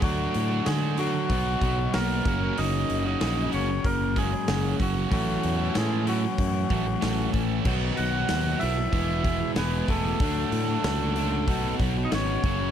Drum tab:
CC |--------|--------|--------|x-------|
HH |oooooooo|oooooooo|oooooooo|-ooooooo|
SD |--o---o-|--o---o-|--o---o-|--o---o-|
BD |o---oo-o|----oo-o|o---oo-o|o---oo-o|

CC |--------|
HH |oooooooo|
SD |--o---o-|
BD |o---oo-o|